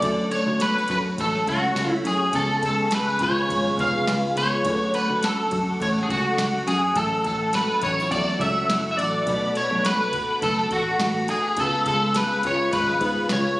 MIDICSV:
0, 0, Header, 1, 7, 480
1, 0, Start_track
1, 0, Tempo, 577478
1, 21, Time_signature, 4, 2, 24, 8
1, 11303, End_track
2, 0, Start_track
2, 0, Title_t, "String machine"
2, 0, Program_c, 0, 50
2, 0, Note_on_c, 0, 69, 86
2, 14, Note_on_c, 0, 78, 77
2, 16, Note_on_c, 0, 73, 74
2, 20, Note_on_c, 0, 85, 95
2, 1897, Note_off_c, 0, 69, 0
2, 1919, Note_off_c, 0, 78, 0
2, 1920, Note_off_c, 0, 73, 0
2, 1946, Note_on_c, 0, 77, 80
2, 1950, Note_on_c, 0, 68, 80
2, 1954, Note_on_c, 0, 83, 80
2, 3828, Note_off_c, 0, 85, 0
2, 3845, Note_off_c, 0, 77, 0
2, 3847, Note_off_c, 0, 68, 0
2, 3847, Note_on_c, 0, 85, 81
2, 3849, Note_off_c, 0, 83, 0
2, 3852, Note_on_c, 0, 69, 86
2, 3853, Note_on_c, 0, 78, 80
2, 3856, Note_on_c, 0, 86, 90
2, 5755, Note_off_c, 0, 85, 0
2, 5758, Note_off_c, 0, 69, 0
2, 5758, Note_off_c, 0, 78, 0
2, 5760, Note_off_c, 0, 86, 0
2, 5780, Note_on_c, 0, 78, 75
2, 5781, Note_on_c, 0, 69, 80
2, 5782, Note_on_c, 0, 85, 79
2, 5785, Note_on_c, 0, 88, 93
2, 7674, Note_off_c, 0, 69, 0
2, 7680, Note_on_c, 0, 83, 80
2, 7682, Note_off_c, 0, 85, 0
2, 7683, Note_off_c, 0, 88, 0
2, 7684, Note_on_c, 0, 69, 81
2, 7687, Note_on_c, 0, 86, 97
2, 9585, Note_off_c, 0, 78, 0
2, 9591, Note_off_c, 0, 69, 0
2, 9593, Note_off_c, 0, 86, 0
2, 9628, Note_on_c, 0, 77, 78
2, 9631, Note_on_c, 0, 68, 85
2, 9631, Note_on_c, 0, 85, 98
2, 11303, Note_off_c, 0, 68, 0
2, 11303, Note_off_c, 0, 77, 0
2, 11303, Note_off_c, 0, 83, 0
2, 11303, Note_off_c, 0, 85, 0
2, 11303, End_track
3, 0, Start_track
3, 0, Title_t, "Clean electric guitar"
3, 0, Program_c, 1, 27
3, 0, Note_on_c, 1, 74, 101
3, 259, Note_off_c, 1, 74, 0
3, 262, Note_on_c, 1, 73, 91
3, 509, Note_off_c, 1, 73, 0
3, 514, Note_on_c, 1, 71, 96
3, 745, Note_off_c, 1, 71, 0
3, 755, Note_on_c, 1, 71, 92
3, 818, Note_off_c, 1, 71, 0
3, 1001, Note_on_c, 1, 69, 100
3, 1215, Note_off_c, 1, 69, 0
3, 1235, Note_on_c, 1, 66, 94
3, 1576, Note_off_c, 1, 66, 0
3, 1576, Note_on_c, 1, 64, 94
3, 1675, Note_off_c, 1, 64, 0
3, 1718, Note_on_c, 1, 68, 90
3, 1953, Note_off_c, 1, 68, 0
3, 1956, Note_on_c, 1, 69, 103
3, 2196, Note_off_c, 1, 69, 0
3, 2209, Note_on_c, 1, 69, 89
3, 2442, Note_off_c, 1, 69, 0
3, 2449, Note_on_c, 1, 71, 98
3, 2683, Note_off_c, 1, 71, 0
3, 2686, Note_on_c, 1, 73, 109
3, 3159, Note_off_c, 1, 73, 0
3, 3162, Note_on_c, 1, 77, 103
3, 3633, Note_off_c, 1, 77, 0
3, 3637, Note_on_c, 1, 73, 108
3, 4108, Note_off_c, 1, 73, 0
3, 4111, Note_on_c, 1, 71, 93
3, 4354, Note_off_c, 1, 71, 0
3, 4361, Note_on_c, 1, 69, 91
3, 4841, Note_on_c, 1, 73, 103
3, 4846, Note_off_c, 1, 69, 0
3, 4889, Note_off_c, 1, 73, 0
3, 5010, Note_on_c, 1, 68, 72
3, 5062, Note_off_c, 1, 68, 0
3, 5074, Note_on_c, 1, 66, 92
3, 5515, Note_off_c, 1, 66, 0
3, 5548, Note_on_c, 1, 68, 94
3, 5787, Note_off_c, 1, 68, 0
3, 5790, Note_on_c, 1, 69, 99
3, 6028, Note_off_c, 1, 69, 0
3, 6038, Note_on_c, 1, 69, 84
3, 6254, Note_off_c, 1, 69, 0
3, 6275, Note_on_c, 1, 71, 95
3, 6508, Note_off_c, 1, 71, 0
3, 6512, Note_on_c, 1, 73, 96
3, 6742, Note_off_c, 1, 73, 0
3, 6746, Note_on_c, 1, 74, 95
3, 6967, Note_off_c, 1, 74, 0
3, 6990, Note_on_c, 1, 76, 93
3, 7397, Note_off_c, 1, 76, 0
3, 7407, Note_on_c, 1, 76, 74
3, 7455, Note_off_c, 1, 76, 0
3, 7458, Note_on_c, 1, 74, 101
3, 7951, Note_off_c, 1, 74, 0
3, 7954, Note_on_c, 1, 73, 86
3, 8189, Note_off_c, 1, 73, 0
3, 8193, Note_on_c, 1, 71, 95
3, 8633, Note_off_c, 1, 71, 0
3, 8669, Note_on_c, 1, 69, 91
3, 8888, Note_off_c, 1, 69, 0
3, 8915, Note_on_c, 1, 66, 84
3, 9354, Note_off_c, 1, 66, 0
3, 9395, Note_on_c, 1, 68, 87
3, 9634, Note_off_c, 1, 68, 0
3, 9641, Note_on_c, 1, 69, 95
3, 9862, Note_off_c, 1, 69, 0
3, 9872, Note_on_c, 1, 69, 86
3, 10111, Note_off_c, 1, 69, 0
3, 10115, Note_on_c, 1, 71, 91
3, 10330, Note_off_c, 1, 71, 0
3, 10362, Note_on_c, 1, 73, 98
3, 10578, Note_off_c, 1, 73, 0
3, 10581, Note_on_c, 1, 71, 92
3, 11026, Note_off_c, 1, 71, 0
3, 11076, Note_on_c, 1, 73, 96
3, 11303, Note_off_c, 1, 73, 0
3, 11303, End_track
4, 0, Start_track
4, 0, Title_t, "Synth keys"
4, 0, Program_c, 2, 88
4, 0, Control_c, 2, 64, 127
4, 2, Note_on_c, 2, 54, 68
4, 6, Note_on_c, 2, 57, 61
4, 19, Note_on_c, 2, 61, 62
4, 31, Control_c, 2, 64, 0
4, 31, Note_on_c, 2, 62, 61
4, 37, Note_on_c, 2, 69, 78
4, 168, Control_c, 2, 64, 127
4, 1899, Note_off_c, 2, 54, 0
4, 1901, Note_off_c, 2, 57, 0
4, 1908, Note_off_c, 2, 61, 0
4, 1914, Note_off_c, 2, 62, 0
4, 1917, Note_off_c, 2, 69, 0
4, 1928, Note_on_c, 2, 52, 55
4, 1935, Note_on_c, 2, 56, 65
4, 1951, Note_on_c, 2, 59, 63
4, 1954, Control_c, 2, 64, 0
4, 1958, Note_on_c, 2, 61, 65
4, 1969, Note_on_c, 2, 68, 76
4, 1982, Note_on_c, 2, 53, 70
4, 1994, Note_off_c, 2, 52, 0
4, 2099, Control_c, 2, 64, 127
4, 3826, Note_off_c, 2, 56, 0
4, 3833, Note_off_c, 2, 59, 0
4, 3837, Note_off_c, 2, 61, 0
4, 3841, Note_on_c, 2, 54, 66
4, 3843, Note_off_c, 2, 68, 0
4, 3849, Note_off_c, 2, 53, 0
4, 3850, Note_on_c, 2, 57, 64
4, 3860, Note_on_c, 2, 61, 62
4, 3870, Note_on_c, 2, 62, 61
4, 3874, Control_c, 2, 64, 0
4, 3882, Note_on_c, 2, 69, 75
4, 4001, Control_c, 2, 64, 127
4, 5738, Note_off_c, 2, 54, 0
4, 5743, Note_off_c, 2, 57, 0
4, 5747, Note_off_c, 2, 61, 0
4, 5753, Note_off_c, 2, 62, 0
4, 5758, Note_off_c, 2, 69, 0
4, 5766, Note_on_c, 2, 54, 69
4, 5773, Note_on_c, 2, 57, 61
4, 5785, Note_on_c, 2, 61, 61
4, 5791, Control_c, 2, 64, 0
4, 5795, Note_on_c, 2, 64, 60
4, 5805, Note_on_c, 2, 69, 70
4, 5934, Control_c, 2, 64, 127
4, 7660, Note_off_c, 2, 54, 0
4, 7663, Note_off_c, 2, 57, 0
4, 7669, Note_off_c, 2, 61, 0
4, 7674, Note_off_c, 2, 64, 0
4, 7679, Note_off_c, 2, 69, 0
4, 7681, Note_on_c, 2, 57, 70
4, 7691, Note_on_c, 2, 59, 63
4, 7699, Note_on_c, 2, 62, 64
4, 7708, Note_on_c, 2, 66, 66
4, 7712, Control_c, 2, 64, 0
4, 7717, Note_on_c, 2, 71, 78
4, 7872, Control_c, 2, 64, 127
4, 9576, Note_off_c, 2, 57, 0
4, 9581, Note_off_c, 2, 59, 0
4, 9585, Note_off_c, 2, 62, 0
4, 9590, Note_off_c, 2, 66, 0
4, 9594, Note_off_c, 2, 71, 0
4, 9608, Note_on_c, 2, 56, 68
4, 9622, Note_on_c, 2, 59, 61
4, 9628, Note_on_c, 2, 61, 65
4, 9630, Control_c, 2, 64, 0
4, 9640, Note_on_c, 2, 65, 62
4, 9653, Note_on_c, 2, 71, 78
4, 9757, Control_c, 2, 64, 127
4, 11303, Note_off_c, 2, 56, 0
4, 11303, Note_off_c, 2, 59, 0
4, 11303, Note_off_c, 2, 61, 0
4, 11303, Note_off_c, 2, 65, 0
4, 11303, Note_off_c, 2, 71, 0
4, 11303, End_track
5, 0, Start_track
5, 0, Title_t, "Nylon-string guitar"
5, 0, Program_c, 3, 24
5, 0, Note_on_c, 3, 54, 66
5, 26, Note_on_c, 3, 50, 82
5, 263, Note_off_c, 3, 54, 0
5, 267, Note_on_c, 3, 57, 63
5, 512, Note_on_c, 3, 59, 67
5, 651, Note_off_c, 3, 59, 0
5, 651, Note_on_c, 3, 61, 54
5, 759, Note_on_c, 3, 66, 70
5, 977, Note_off_c, 3, 57, 0
5, 987, Note_on_c, 3, 57, 73
5, 1210, Note_off_c, 3, 61, 0
5, 1220, Note_on_c, 3, 61, 62
5, 1463, Note_off_c, 3, 66, 0
5, 1473, Note_on_c, 3, 66, 74
5, 1698, Note_off_c, 3, 61, 0
5, 1702, Note_on_c, 3, 61, 68
5, 1933, Note_off_c, 3, 50, 0
5, 1936, Note_on_c, 3, 49, 85
5, 1997, Note_off_c, 3, 57, 0
5, 2000, Note_off_c, 3, 66, 0
5, 2178, Note_on_c, 3, 56, 60
5, 2422, Note_off_c, 3, 61, 0
5, 2426, Note_on_c, 3, 59, 66
5, 2671, Note_on_c, 3, 65, 65
5, 2895, Note_off_c, 3, 56, 0
5, 2905, Note_on_c, 3, 56, 68
5, 3128, Note_off_c, 3, 59, 0
5, 3138, Note_on_c, 3, 59, 66
5, 3378, Note_off_c, 3, 65, 0
5, 3388, Note_on_c, 3, 65, 72
5, 3620, Note_off_c, 3, 59, 0
5, 3634, Note_on_c, 3, 59, 66
5, 3859, Note_off_c, 3, 49, 0
5, 3869, Note_on_c, 3, 50, 80
5, 3917, Note_off_c, 3, 56, 0
5, 3918, Note_off_c, 3, 65, 0
5, 3921, Note_off_c, 3, 59, 0
5, 4114, Note_on_c, 3, 57, 61
5, 4351, Note_on_c, 3, 61, 61
5, 4576, Note_on_c, 3, 66, 68
5, 4818, Note_off_c, 3, 57, 0
5, 4821, Note_on_c, 3, 57, 69
5, 5064, Note_off_c, 3, 61, 0
5, 5068, Note_on_c, 3, 61, 63
5, 5302, Note_off_c, 3, 66, 0
5, 5306, Note_on_c, 3, 66, 74
5, 5541, Note_off_c, 3, 61, 0
5, 5544, Note_on_c, 3, 61, 64
5, 5786, Note_off_c, 3, 50, 0
5, 5789, Note_on_c, 3, 45, 81
5, 6020, Note_off_c, 3, 57, 0
5, 6023, Note_on_c, 3, 54, 62
5, 6263, Note_off_c, 3, 61, 0
5, 6266, Note_on_c, 3, 61, 67
5, 6513, Note_off_c, 3, 66, 0
5, 6516, Note_on_c, 3, 62, 70
5, 6647, Note_off_c, 3, 62, 0
5, 6647, Note_on_c, 3, 64, 60
5, 6743, Note_off_c, 3, 54, 0
5, 6746, Note_on_c, 3, 54, 72
5, 6975, Note_off_c, 3, 61, 0
5, 6985, Note_on_c, 3, 61, 64
5, 7221, Note_off_c, 3, 64, 0
5, 7231, Note_on_c, 3, 64, 74
5, 7463, Note_off_c, 3, 61, 0
5, 7705, Note_off_c, 3, 45, 0
5, 7713, Note_on_c, 3, 47, 81
5, 7759, Note_off_c, 3, 64, 0
5, 7940, Note_off_c, 3, 54, 0
5, 7944, Note_on_c, 3, 57, 62
5, 8191, Note_on_c, 3, 62, 65
5, 8436, Note_on_c, 3, 66, 70
5, 8662, Note_off_c, 3, 57, 0
5, 8673, Note_on_c, 3, 57, 72
5, 8889, Note_off_c, 3, 62, 0
5, 8899, Note_on_c, 3, 62, 71
5, 9133, Note_off_c, 3, 66, 0
5, 9143, Note_on_c, 3, 66, 75
5, 9373, Note_off_c, 3, 62, 0
5, 9383, Note_on_c, 3, 62, 65
5, 9616, Note_on_c, 3, 49, 81
5, 9625, Note_off_c, 3, 47, 0
5, 9674, Note_off_c, 3, 62, 0
5, 9674, Note_off_c, 3, 66, 0
5, 9678, Note_off_c, 3, 57, 0
5, 9859, Note_on_c, 3, 56, 63
5, 10098, Note_on_c, 3, 59, 67
5, 10334, Note_on_c, 3, 65, 71
5, 10555, Note_off_c, 3, 56, 0
5, 10565, Note_on_c, 3, 56, 71
5, 10809, Note_off_c, 3, 59, 0
5, 10819, Note_on_c, 3, 59, 68
5, 11051, Note_off_c, 3, 65, 0
5, 11061, Note_on_c, 3, 65, 72
5, 11283, Note_off_c, 3, 59, 0
5, 11303, Note_off_c, 3, 49, 0
5, 11303, Note_off_c, 3, 56, 0
5, 11303, Note_off_c, 3, 65, 0
5, 11303, End_track
6, 0, Start_track
6, 0, Title_t, "Picked electric bass"
6, 0, Program_c, 4, 34
6, 19, Note_on_c, 4, 38, 113
6, 212, Note_off_c, 4, 38, 0
6, 387, Note_on_c, 4, 38, 98
6, 668, Note_off_c, 4, 38, 0
6, 741, Note_on_c, 4, 42, 95
6, 933, Note_off_c, 4, 42, 0
6, 981, Note_on_c, 4, 33, 100
6, 1173, Note_off_c, 4, 33, 0
6, 1217, Note_on_c, 4, 37, 92
6, 1411, Note_off_c, 4, 37, 0
6, 1456, Note_on_c, 4, 37, 102
6, 1650, Note_off_c, 4, 37, 0
6, 1698, Note_on_c, 4, 42, 91
6, 1892, Note_off_c, 4, 42, 0
6, 1941, Note_on_c, 4, 37, 110
6, 2134, Note_off_c, 4, 37, 0
6, 2183, Note_on_c, 4, 37, 106
6, 2480, Note_off_c, 4, 37, 0
6, 2665, Note_on_c, 4, 37, 104
6, 2856, Note_off_c, 4, 37, 0
6, 2900, Note_on_c, 4, 32, 92
6, 3093, Note_off_c, 4, 32, 0
6, 3140, Note_on_c, 4, 29, 93
6, 3333, Note_off_c, 4, 29, 0
6, 3380, Note_on_c, 4, 37, 97
6, 3573, Note_off_c, 4, 37, 0
6, 3622, Note_on_c, 4, 37, 95
6, 3814, Note_off_c, 4, 37, 0
6, 3864, Note_on_c, 4, 38, 104
6, 4055, Note_off_c, 4, 38, 0
6, 4233, Note_on_c, 4, 38, 88
6, 4512, Note_off_c, 4, 38, 0
6, 4586, Note_on_c, 4, 42, 95
6, 4777, Note_off_c, 4, 42, 0
6, 4820, Note_on_c, 4, 33, 95
6, 5013, Note_off_c, 4, 33, 0
6, 5058, Note_on_c, 4, 37, 87
6, 5251, Note_off_c, 4, 37, 0
6, 5301, Note_on_c, 4, 37, 97
6, 5493, Note_off_c, 4, 37, 0
6, 5542, Note_on_c, 4, 42, 92
6, 5734, Note_off_c, 4, 42, 0
6, 5782, Note_on_c, 4, 33, 110
6, 5974, Note_off_c, 4, 33, 0
6, 6019, Note_on_c, 4, 33, 103
6, 6318, Note_off_c, 4, 33, 0
6, 6505, Note_on_c, 4, 33, 111
6, 6738, Note_off_c, 4, 33, 0
6, 6738, Note_on_c, 4, 40, 96
6, 6931, Note_off_c, 4, 40, 0
6, 6976, Note_on_c, 4, 37, 94
6, 7170, Note_off_c, 4, 37, 0
6, 7219, Note_on_c, 4, 30, 96
6, 7412, Note_off_c, 4, 30, 0
6, 7464, Note_on_c, 4, 33, 91
6, 7655, Note_off_c, 4, 33, 0
6, 7700, Note_on_c, 4, 35, 106
6, 7892, Note_off_c, 4, 35, 0
6, 8070, Note_on_c, 4, 35, 99
6, 8422, Note_off_c, 4, 35, 0
6, 8422, Note_on_c, 4, 38, 98
6, 8613, Note_off_c, 4, 38, 0
6, 8659, Note_on_c, 4, 30, 96
6, 8895, Note_off_c, 4, 30, 0
6, 8895, Note_on_c, 4, 33, 88
6, 9089, Note_off_c, 4, 33, 0
6, 9142, Note_on_c, 4, 33, 101
6, 9379, Note_off_c, 4, 33, 0
6, 9379, Note_on_c, 4, 38, 95
6, 9571, Note_off_c, 4, 38, 0
6, 9616, Note_on_c, 4, 37, 110
6, 9809, Note_off_c, 4, 37, 0
6, 9859, Note_on_c, 4, 37, 106
6, 10156, Note_off_c, 4, 37, 0
6, 10340, Note_on_c, 4, 37, 102
6, 10531, Note_off_c, 4, 37, 0
6, 10579, Note_on_c, 4, 32, 108
6, 10770, Note_off_c, 4, 32, 0
6, 10808, Note_on_c, 4, 44, 90
6, 11004, Note_off_c, 4, 44, 0
6, 11059, Note_on_c, 4, 37, 99
6, 11250, Note_off_c, 4, 37, 0
6, 11303, End_track
7, 0, Start_track
7, 0, Title_t, "Drums"
7, 19, Note_on_c, 9, 51, 74
7, 21, Note_on_c, 9, 36, 107
7, 102, Note_off_c, 9, 51, 0
7, 104, Note_off_c, 9, 36, 0
7, 261, Note_on_c, 9, 51, 54
7, 344, Note_off_c, 9, 51, 0
7, 498, Note_on_c, 9, 51, 80
7, 509, Note_on_c, 9, 38, 119
7, 582, Note_off_c, 9, 51, 0
7, 592, Note_off_c, 9, 38, 0
7, 729, Note_on_c, 9, 51, 62
7, 743, Note_on_c, 9, 36, 90
7, 812, Note_off_c, 9, 51, 0
7, 826, Note_off_c, 9, 36, 0
7, 982, Note_on_c, 9, 36, 92
7, 983, Note_on_c, 9, 51, 70
7, 1065, Note_off_c, 9, 36, 0
7, 1067, Note_off_c, 9, 51, 0
7, 1123, Note_on_c, 9, 38, 36
7, 1207, Note_off_c, 9, 38, 0
7, 1220, Note_on_c, 9, 36, 92
7, 1226, Note_on_c, 9, 51, 69
7, 1303, Note_off_c, 9, 36, 0
7, 1309, Note_off_c, 9, 51, 0
7, 1464, Note_on_c, 9, 38, 115
7, 1472, Note_on_c, 9, 51, 74
7, 1547, Note_off_c, 9, 38, 0
7, 1555, Note_off_c, 9, 51, 0
7, 1705, Note_on_c, 9, 51, 73
7, 1788, Note_off_c, 9, 51, 0
7, 1937, Note_on_c, 9, 51, 76
7, 1944, Note_on_c, 9, 36, 110
7, 2020, Note_off_c, 9, 51, 0
7, 2027, Note_off_c, 9, 36, 0
7, 2184, Note_on_c, 9, 51, 56
7, 2186, Note_on_c, 9, 36, 94
7, 2267, Note_off_c, 9, 51, 0
7, 2269, Note_off_c, 9, 36, 0
7, 2417, Note_on_c, 9, 51, 86
7, 2427, Note_on_c, 9, 38, 116
7, 2500, Note_off_c, 9, 51, 0
7, 2510, Note_off_c, 9, 38, 0
7, 2652, Note_on_c, 9, 51, 64
7, 2666, Note_on_c, 9, 36, 99
7, 2735, Note_off_c, 9, 51, 0
7, 2750, Note_off_c, 9, 36, 0
7, 2905, Note_on_c, 9, 36, 94
7, 2912, Note_on_c, 9, 51, 75
7, 2988, Note_off_c, 9, 36, 0
7, 2995, Note_off_c, 9, 51, 0
7, 3051, Note_on_c, 9, 38, 36
7, 3134, Note_off_c, 9, 38, 0
7, 3142, Note_on_c, 9, 36, 92
7, 3151, Note_on_c, 9, 51, 67
7, 3225, Note_off_c, 9, 36, 0
7, 3234, Note_off_c, 9, 51, 0
7, 3387, Note_on_c, 9, 38, 115
7, 3395, Note_on_c, 9, 51, 78
7, 3470, Note_off_c, 9, 38, 0
7, 3478, Note_off_c, 9, 51, 0
7, 3631, Note_on_c, 9, 51, 75
7, 3714, Note_off_c, 9, 51, 0
7, 3862, Note_on_c, 9, 51, 75
7, 3866, Note_on_c, 9, 36, 120
7, 3945, Note_off_c, 9, 51, 0
7, 3949, Note_off_c, 9, 36, 0
7, 4105, Note_on_c, 9, 51, 54
7, 4188, Note_off_c, 9, 51, 0
7, 4344, Note_on_c, 9, 51, 77
7, 4354, Note_on_c, 9, 38, 115
7, 4427, Note_off_c, 9, 51, 0
7, 4437, Note_off_c, 9, 38, 0
7, 4581, Note_on_c, 9, 51, 61
7, 4589, Note_on_c, 9, 36, 95
7, 4664, Note_off_c, 9, 51, 0
7, 4672, Note_off_c, 9, 36, 0
7, 4826, Note_on_c, 9, 36, 91
7, 4834, Note_on_c, 9, 51, 72
7, 4909, Note_off_c, 9, 36, 0
7, 4917, Note_off_c, 9, 51, 0
7, 4974, Note_on_c, 9, 38, 36
7, 5057, Note_off_c, 9, 38, 0
7, 5062, Note_on_c, 9, 36, 97
7, 5074, Note_on_c, 9, 51, 71
7, 5145, Note_off_c, 9, 36, 0
7, 5157, Note_off_c, 9, 51, 0
7, 5306, Note_on_c, 9, 38, 110
7, 5314, Note_on_c, 9, 51, 76
7, 5389, Note_off_c, 9, 38, 0
7, 5397, Note_off_c, 9, 51, 0
7, 5548, Note_on_c, 9, 51, 74
7, 5631, Note_off_c, 9, 51, 0
7, 5781, Note_on_c, 9, 51, 75
7, 5783, Note_on_c, 9, 36, 113
7, 5864, Note_off_c, 9, 51, 0
7, 5866, Note_off_c, 9, 36, 0
7, 6022, Note_on_c, 9, 51, 52
7, 6023, Note_on_c, 9, 36, 90
7, 6105, Note_off_c, 9, 51, 0
7, 6106, Note_off_c, 9, 36, 0
7, 6259, Note_on_c, 9, 51, 80
7, 6269, Note_on_c, 9, 38, 118
7, 6342, Note_off_c, 9, 51, 0
7, 6352, Note_off_c, 9, 38, 0
7, 6496, Note_on_c, 9, 51, 64
7, 6505, Note_on_c, 9, 36, 90
7, 6579, Note_off_c, 9, 51, 0
7, 6588, Note_off_c, 9, 36, 0
7, 6741, Note_on_c, 9, 36, 95
7, 6746, Note_on_c, 9, 51, 72
7, 6824, Note_off_c, 9, 36, 0
7, 6829, Note_off_c, 9, 51, 0
7, 6890, Note_on_c, 9, 38, 36
7, 6973, Note_off_c, 9, 38, 0
7, 6978, Note_on_c, 9, 36, 93
7, 6990, Note_on_c, 9, 51, 68
7, 7061, Note_off_c, 9, 36, 0
7, 7074, Note_off_c, 9, 51, 0
7, 7228, Note_on_c, 9, 38, 115
7, 7235, Note_on_c, 9, 51, 78
7, 7311, Note_off_c, 9, 38, 0
7, 7319, Note_off_c, 9, 51, 0
7, 7470, Note_on_c, 9, 51, 70
7, 7554, Note_off_c, 9, 51, 0
7, 7703, Note_on_c, 9, 36, 110
7, 7704, Note_on_c, 9, 51, 76
7, 7786, Note_off_c, 9, 36, 0
7, 7787, Note_off_c, 9, 51, 0
7, 7941, Note_on_c, 9, 51, 52
7, 8025, Note_off_c, 9, 51, 0
7, 8185, Note_on_c, 9, 51, 81
7, 8195, Note_on_c, 9, 38, 120
7, 8268, Note_off_c, 9, 51, 0
7, 8278, Note_off_c, 9, 38, 0
7, 8419, Note_on_c, 9, 51, 66
7, 8424, Note_on_c, 9, 36, 92
7, 8502, Note_off_c, 9, 51, 0
7, 8507, Note_off_c, 9, 36, 0
7, 8660, Note_on_c, 9, 36, 94
7, 8663, Note_on_c, 9, 51, 74
7, 8744, Note_off_c, 9, 36, 0
7, 8746, Note_off_c, 9, 51, 0
7, 8803, Note_on_c, 9, 38, 36
7, 8886, Note_off_c, 9, 38, 0
7, 8896, Note_on_c, 9, 36, 92
7, 8900, Note_on_c, 9, 51, 67
7, 8979, Note_off_c, 9, 36, 0
7, 8983, Note_off_c, 9, 51, 0
7, 9139, Note_on_c, 9, 38, 113
7, 9147, Note_on_c, 9, 51, 78
7, 9223, Note_off_c, 9, 38, 0
7, 9230, Note_off_c, 9, 51, 0
7, 9377, Note_on_c, 9, 51, 74
7, 9460, Note_off_c, 9, 51, 0
7, 9614, Note_on_c, 9, 51, 75
7, 9620, Note_on_c, 9, 36, 118
7, 9697, Note_off_c, 9, 51, 0
7, 9703, Note_off_c, 9, 36, 0
7, 9856, Note_on_c, 9, 51, 56
7, 9861, Note_on_c, 9, 36, 94
7, 9939, Note_off_c, 9, 51, 0
7, 9944, Note_off_c, 9, 36, 0
7, 10095, Note_on_c, 9, 51, 81
7, 10105, Note_on_c, 9, 38, 120
7, 10178, Note_off_c, 9, 51, 0
7, 10188, Note_off_c, 9, 38, 0
7, 10334, Note_on_c, 9, 51, 67
7, 10343, Note_on_c, 9, 36, 95
7, 10417, Note_off_c, 9, 51, 0
7, 10426, Note_off_c, 9, 36, 0
7, 10578, Note_on_c, 9, 36, 94
7, 10579, Note_on_c, 9, 51, 73
7, 10661, Note_off_c, 9, 36, 0
7, 10662, Note_off_c, 9, 51, 0
7, 10718, Note_on_c, 9, 38, 36
7, 10801, Note_off_c, 9, 38, 0
7, 10811, Note_on_c, 9, 36, 94
7, 10812, Note_on_c, 9, 51, 72
7, 10894, Note_off_c, 9, 36, 0
7, 10895, Note_off_c, 9, 51, 0
7, 11049, Note_on_c, 9, 38, 119
7, 11057, Note_on_c, 9, 51, 77
7, 11132, Note_off_c, 9, 38, 0
7, 11140, Note_off_c, 9, 51, 0
7, 11303, End_track
0, 0, End_of_file